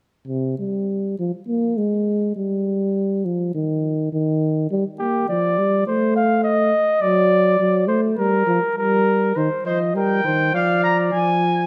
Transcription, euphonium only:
0, 0, Header, 1, 2, 480
1, 0, Start_track
1, 0, Tempo, 594648
1, 1907, Time_signature, 4, 2, 24, 8
1, 2385, Tempo, 580833
1, 6705, Tempo, 591716
1, 9531, End_track
2, 0, Start_track
2, 0, Title_t, "Euphonium"
2, 0, Program_c, 0, 58
2, 223, Note_on_c, 0, 48, 72
2, 452, Note_off_c, 0, 48, 0
2, 474, Note_on_c, 0, 55, 67
2, 945, Note_off_c, 0, 55, 0
2, 961, Note_on_c, 0, 53, 71
2, 1066, Note_off_c, 0, 53, 0
2, 1193, Note_on_c, 0, 58, 82
2, 1430, Note_on_c, 0, 56, 86
2, 1443, Note_off_c, 0, 58, 0
2, 1902, Note_off_c, 0, 56, 0
2, 1907, Note_on_c, 0, 55, 77
2, 2629, Note_on_c, 0, 53, 78
2, 2642, Note_off_c, 0, 55, 0
2, 2869, Note_off_c, 0, 53, 0
2, 2874, Note_on_c, 0, 51, 77
2, 3342, Note_off_c, 0, 51, 0
2, 3353, Note_on_c, 0, 51, 84
2, 3823, Note_off_c, 0, 51, 0
2, 3833, Note_on_c, 0, 55, 79
2, 3940, Note_off_c, 0, 55, 0
2, 4077, Note_on_c, 0, 58, 64
2, 4309, Note_off_c, 0, 58, 0
2, 4316, Note_on_c, 0, 53, 68
2, 4556, Note_on_c, 0, 55, 70
2, 4568, Note_off_c, 0, 53, 0
2, 4790, Note_off_c, 0, 55, 0
2, 4795, Note_on_c, 0, 57, 78
2, 5511, Note_off_c, 0, 57, 0
2, 5750, Note_on_c, 0, 54, 76
2, 6192, Note_off_c, 0, 54, 0
2, 6219, Note_on_c, 0, 54, 74
2, 6452, Note_on_c, 0, 57, 82
2, 6465, Note_off_c, 0, 54, 0
2, 6697, Note_off_c, 0, 57, 0
2, 6702, Note_on_c, 0, 55, 74
2, 6931, Note_off_c, 0, 55, 0
2, 6936, Note_on_c, 0, 53, 73
2, 7046, Note_off_c, 0, 53, 0
2, 7179, Note_on_c, 0, 55, 76
2, 7648, Note_off_c, 0, 55, 0
2, 7663, Note_on_c, 0, 51, 73
2, 7769, Note_off_c, 0, 51, 0
2, 7892, Note_on_c, 0, 53, 68
2, 8137, Note_on_c, 0, 55, 76
2, 8149, Note_off_c, 0, 53, 0
2, 8369, Note_off_c, 0, 55, 0
2, 8374, Note_on_c, 0, 51, 74
2, 8610, Note_off_c, 0, 51, 0
2, 8615, Note_on_c, 0, 53, 75
2, 9090, Note_off_c, 0, 53, 0
2, 9096, Note_on_c, 0, 53, 71
2, 9531, Note_off_c, 0, 53, 0
2, 9531, End_track
0, 0, End_of_file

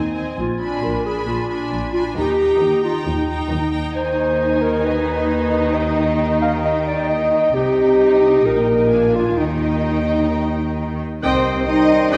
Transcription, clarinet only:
0, 0, Header, 1, 2, 480
1, 0, Start_track
1, 0, Key_signature, -3, "major"
1, 0, Tempo, 448430
1, 404, Time_signature, 4, 2, 24, 8
1, 7602, Tempo, 459418
1, 11922, Tempo, 443787
1, 12932, End_track
2, 0, Start_track
2, 0, Title_t, "Clarinet"
2, 0, Program_c, 0, 71
2, 0, Note_on_c, 0, 63, 39
2, 162, Note_off_c, 0, 63, 0
2, 403, Note_on_c, 0, 65, 53
2, 895, Note_on_c, 0, 70, 58
2, 911, Note_off_c, 0, 65, 0
2, 1123, Note_off_c, 0, 70, 0
2, 1130, Note_on_c, 0, 68, 52
2, 1364, Note_off_c, 0, 68, 0
2, 1369, Note_on_c, 0, 65, 51
2, 2067, Note_off_c, 0, 65, 0
2, 2073, Note_on_c, 0, 65, 47
2, 2183, Note_off_c, 0, 65, 0
2, 2318, Note_on_c, 0, 67, 59
2, 3021, Note_off_c, 0, 67, 0
2, 3038, Note_on_c, 0, 65, 53
2, 3272, Note_off_c, 0, 65, 0
2, 3279, Note_on_c, 0, 63, 50
2, 3980, Note_off_c, 0, 63, 0
2, 4235, Note_on_c, 0, 72, 63
2, 4941, Note_on_c, 0, 70, 61
2, 4957, Note_off_c, 0, 72, 0
2, 5190, Note_on_c, 0, 71, 66
2, 5206, Note_off_c, 0, 70, 0
2, 6148, Note_on_c, 0, 75, 73
2, 6165, Note_off_c, 0, 71, 0
2, 6863, Note_off_c, 0, 75, 0
2, 6870, Note_on_c, 0, 77, 69
2, 6980, Note_off_c, 0, 77, 0
2, 7117, Note_on_c, 0, 75, 69
2, 7226, Note_off_c, 0, 75, 0
2, 7357, Note_on_c, 0, 74, 65
2, 7584, Note_off_c, 0, 74, 0
2, 7590, Note_on_c, 0, 75, 75
2, 8066, Note_on_c, 0, 67, 70
2, 8081, Note_off_c, 0, 75, 0
2, 9018, Note_on_c, 0, 70, 64
2, 9034, Note_off_c, 0, 67, 0
2, 9742, Note_on_c, 0, 65, 58
2, 9758, Note_off_c, 0, 70, 0
2, 9980, Note_on_c, 0, 63, 54
2, 9996, Note_off_c, 0, 65, 0
2, 11437, Note_off_c, 0, 63, 0
2, 12875, Note_on_c, 0, 67, 51
2, 12932, Note_off_c, 0, 67, 0
2, 12932, End_track
0, 0, End_of_file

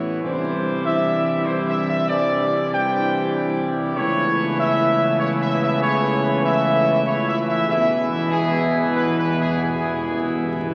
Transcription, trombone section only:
0, 0, Header, 1, 2, 480
1, 0, Start_track
1, 0, Key_signature, 3, "major"
1, 0, Tempo, 620476
1, 183, Time_signature, 3, 2, 24, 8
1, 5943, Tempo, 638298
1, 6903, Tempo, 660066
1, 8198, End_track
2, 0, Start_track
2, 0, Title_t, "Trombone section"
2, 0, Program_c, 0, 61
2, 0, Note_on_c, 0, 45, 77
2, 0, Note_on_c, 0, 52, 76
2, 151, Note_off_c, 0, 45, 0
2, 151, Note_off_c, 0, 52, 0
2, 181, Note_on_c, 0, 43, 77
2, 185, Note_on_c, 0, 52, 86
2, 628, Note_off_c, 0, 43, 0
2, 630, Note_off_c, 0, 52, 0
2, 668, Note_on_c, 0, 43, 79
2, 671, Note_on_c, 0, 52, 86
2, 1107, Note_off_c, 0, 43, 0
2, 1109, Note_off_c, 0, 52, 0
2, 1140, Note_on_c, 0, 43, 88
2, 1141, Note_on_c, 0, 52, 88
2, 1585, Note_off_c, 0, 43, 0
2, 1585, Note_off_c, 0, 52, 0
2, 1611, Note_on_c, 0, 43, 87
2, 1614, Note_on_c, 0, 52, 90
2, 2078, Note_off_c, 0, 43, 0
2, 2079, Note_off_c, 0, 52, 0
2, 2122, Note_on_c, 0, 43, 88
2, 2122, Note_on_c, 0, 52, 90
2, 2938, Note_off_c, 0, 43, 0
2, 2938, Note_off_c, 0, 52, 0
2, 3070, Note_on_c, 0, 49, 99
2, 3072, Note_on_c, 0, 52, 106
2, 5914, Note_off_c, 0, 49, 0
2, 5915, Note_off_c, 0, 52, 0
2, 5945, Note_on_c, 0, 52, 115
2, 5946, Note_on_c, 0, 47, 104
2, 8198, Note_off_c, 0, 47, 0
2, 8198, Note_off_c, 0, 52, 0
2, 8198, End_track
0, 0, End_of_file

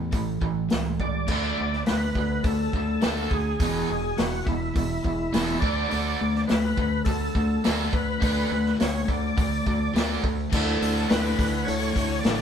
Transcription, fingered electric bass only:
0, 0, Header, 1, 2, 480
1, 0, Start_track
1, 0, Tempo, 576923
1, 1076, Time_signature, 4, 2, 24, 8
1, 10329, End_track
2, 0, Start_track
2, 0, Title_t, "Fingered electric bass"
2, 0, Program_c, 0, 33
2, 0, Note_on_c, 0, 40, 82
2, 99, Note_off_c, 0, 40, 0
2, 113, Note_on_c, 0, 33, 82
2, 338, Note_off_c, 0, 33, 0
2, 343, Note_on_c, 0, 33, 81
2, 578, Note_off_c, 0, 33, 0
2, 603, Note_on_c, 0, 37, 76
2, 1059, Note_off_c, 0, 37, 0
2, 1073, Note_on_c, 0, 38, 102
2, 1253, Note_off_c, 0, 38, 0
2, 1331, Note_on_c, 0, 38, 72
2, 1505, Note_off_c, 0, 38, 0
2, 1581, Note_on_c, 0, 38, 87
2, 1751, Note_off_c, 0, 38, 0
2, 1795, Note_on_c, 0, 38, 89
2, 1975, Note_off_c, 0, 38, 0
2, 2029, Note_on_c, 0, 38, 84
2, 2211, Note_off_c, 0, 38, 0
2, 2282, Note_on_c, 0, 38, 79
2, 2460, Note_off_c, 0, 38, 0
2, 2539, Note_on_c, 0, 38, 82
2, 2711, Note_off_c, 0, 38, 0
2, 2753, Note_on_c, 0, 38, 77
2, 2934, Note_off_c, 0, 38, 0
2, 3003, Note_on_c, 0, 28, 102
2, 3181, Note_off_c, 0, 28, 0
2, 3244, Note_on_c, 0, 28, 79
2, 3422, Note_off_c, 0, 28, 0
2, 3487, Note_on_c, 0, 28, 86
2, 3664, Note_off_c, 0, 28, 0
2, 3719, Note_on_c, 0, 28, 84
2, 3899, Note_off_c, 0, 28, 0
2, 3961, Note_on_c, 0, 28, 93
2, 4140, Note_off_c, 0, 28, 0
2, 4199, Note_on_c, 0, 28, 88
2, 4379, Note_off_c, 0, 28, 0
2, 4440, Note_on_c, 0, 28, 92
2, 4620, Note_off_c, 0, 28, 0
2, 4677, Note_on_c, 0, 38, 85
2, 4858, Note_off_c, 0, 38, 0
2, 4928, Note_on_c, 0, 38, 98
2, 5106, Note_off_c, 0, 38, 0
2, 5167, Note_on_c, 0, 38, 78
2, 5345, Note_off_c, 0, 38, 0
2, 5414, Note_on_c, 0, 38, 85
2, 5590, Note_off_c, 0, 38, 0
2, 5641, Note_on_c, 0, 38, 90
2, 5821, Note_off_c, 0, 38, 0
2, 5877, Note_on_c, 0, 38, 94
2, 6058, Note_off_c, 0, 38, 0
2, 6116, Note_on_c, 0, 38, 89
2, 6298, Note_off_c, 0, 38, 0
2, 6381, Note_on_c, 0, 38, 81
2, 6554, Note_off_c, 0, 38, 0
2, 6599, Note_on_c, 0, 38, 74
2, 6780, Note_off_c, 0, 38, 0
2, 6841, Note_on_c, 0, 38, 103
2, 7021, Note_off_c, 0, 38, 0
2, 7078, Note_on_c, 0, 38, 77
2, 7258, Note_off_c, 0, 38, 0
2, 7334, Note_on_c, 0, 38, 95
2, 7508, Note_off_c, 0, 38, 0
2, 7560, Note_on_c, 0, 38, 86
2, 7740, Note_off_c, 0, 38, 0
2, 7800, Note_on_c, 0, 38, 95
2, 7979, Note_off_c, 0, 38, 0
2, 8044, Note_on_c, 0, 38, 81
2, 8222, Note_off_c, 0, 38, 0
2, 8271, Note_on_c, 0, 38, 86
2, 8453, Note_off_c, 0, 38, 0
2, 8520, Note_on_c, 0, 38, 87
2, 8698, Note_off_c, 0, 38, 0
2, 8761, Note_on_c, 0, 38, 104
2, 8949, Note_off_c, 0, 38, 0
2, 8996, Note_on_c, 0, 38, 79
2, 9186, Note_off_c, 0, 38, 0
2, 9243, Note_on_c, 0, 38, 87
2, 9429, Note_off_c, 0, 38, 0
2, 9475, Note_on_c, 0, 38, 92
2, 9664, Note_off_c, 0, 38, 0
2, 9721, Note_on_c, 0, 38, 93
2, 9907, Note_off_c, 0, 38, 0
2, 9953, Note_on_c, 0, 38, 90
2, 10142, Note_off_c, 0, 38, 0
2, 10193, Note_on_c, 0, 33, 90
2, 10329, Note_off_c, 0, 33, 0
2, 10329, End_track
0, 0, End_of_file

